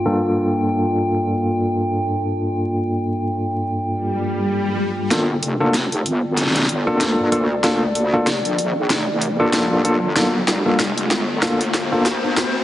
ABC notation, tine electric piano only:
X:1
M:4/4
L:1/16
Q:"Swing 16ths" 1/4=95
K:Gm
V:1 name="Tine electric piano"
[G,,B,DFA]16- | [G,,B,DFA]16 | [B,DFA] z2 [B,DFA] z6 z [B,DFA]3 [B,DFA] z | [B,DFA] z2 [B,DFA] z6 z [B,DFA]3 [B,DFA] z |
[B,DFA] z2 [B,DFA] z4 [B,DFA] z2 [B,DFA] z4 |]